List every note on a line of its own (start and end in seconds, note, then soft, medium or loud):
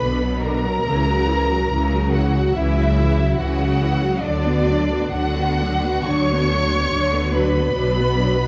0.00 0.75 B1 medium
0.00 0.75 B2 medium
0.00 0.18 D3 soft
0.00 0.18 D4 soft
0.00 0.42 B4 medium
0.00 0.42 B5 medium
0.21 0.42 F#3 medium
0.21 0.42 B3 medium
0.41 0.63 D3 medium
0.41 0.63 D4 medium
0.41 2.13 A#4 medium
0.41 2.14 A#5 medium
0.64 0.85 F#3 soft
0.64 0.85 B3 soft
0.84 1.60 C#2 medium
0.84 1.61 C#3 medium
0.84 1.06 E3 medium
0.84 1.06 E4 medium
1.08 1.29 F#3 medium
1.08 1.29 F#4 medium
1.28 1.50 E3 medium
1.28 1.50 E4 medium
1.50 1.71 F#3 medium
1.50 1.71 F#4 medium
1.71 2.46 C#2 medium
1.71 2.46 C#3 medium
1.71 1.92 E3 medium
1.71 1.92 E4 medium
1.93 2.14 F#3 soft
1.93 2.14 F#4 soft
2.13 2.35 E3 medium
2.13 2.36 E4 medium
2.13 2.56 F#4 medium
2.13 2.55 F#5 medium
2.35 2.56 F#3 soft
2.35 2.57 F#4 soft
2.54 3.29 C#2 medium
2.54 3.29 C#3 medium
2.54 2.75 E3 medium
2.54 2.75 E4 medium
2.54 3.38 E4 medium
2.54 3.38 E5 medium
2.76 2.97 F#3 medium
2.76 2.97 F#4 medium
2.98 3.19 E3 medium
2.98 3.18 E4 medium
3.19 3.39 F#3 soft
3.19 3.39 F#4 medium
3.38 4.14 C#2 medium
3.38 4.13 C#3 medium
3.38 3.58 E3 medium
3.38 3.58 E4 medium
3.38 4.24 F#4 medium
3.38 4.21 F#5 medium
3.60 3.81 F#3 soft
3.60 3.81 F#4 medium
3.81 4.02 E3 medium
3.81 4.02 E4 medium
4.02 4.23 F#3 medium
4.02 4.23 F#4 soft
4.24 5.01 D2 medium
4.24 5.01 D3 medium
4.24 4.44 F#3 medium
4.24 4.44 D4 medium
4.24 5.11 D4 medium
4.24 5.11 D5 medium
4.45 4.67 B3 medium
4.45 4.67 F#4 medium
4.68 4.89 F#3 medium
4.68 4.90 D4 medium
4.90 5.12 B3 medium
4.90 5.12 F#4 medium
5.12 5.96 D2 medium
5.12 5.96 D3 medium
5.12 5.33 F#3 soft
5.12 5.33 D4 medium
5.12 6.07 F#4 medium
5.12 6.05 F#5 medium
5.36 5.59 B3 medium
5.36 5.59 F#4 medium
5.60 5.84 F#3 medium
5.60 5.83 D4 medium
5.84 6.07 B3 medium
5.84 6.07 F#4 medium
6.07 6.83 D2 medium
6.07 6.83 D3 medium
6.07 6.28 F#3 medium
6.07 6.28 D4 medium
6.07 7.34 C#5 loud
6.07 7.34 C#6 loud
6.31 6.51 B3 medium
6.31 6.52 F#4 medium
6.52 6.72 F#3 medium
6.52 6.72 D4 medium
6.72 6.93 B3 medium
6.72 6.93 F#4 medium
6.92 7.65 D2 medium
6.92 7.65 D3 medium
6.92 7.12 F#3 medium
6.92 7.12 D4 soft
7.12 7.33 B3 medium
7.12 7.33 F#4 medium
7.34 7.54 F#3 medium
7.34 7.54 D4 medium
7.34 8.48 B4 medium
7.34 8.48 B5 medium
7.55 7.75 B3 medium
7.55 7.75 F#4 soft
7.75 8.46 B1 medium
7.75 8.46 B2 medium
7.75 7.94 F#3 medium
7.75 7.94 D4 medium
7.96 8.16 B3 medium
7.96 8.16 F#4 medium
8.16 8.36 F#3 medium
8.16 8.36 D4 medium
8.35 8.48 B3 medium
8.35 8.48 F#4 medium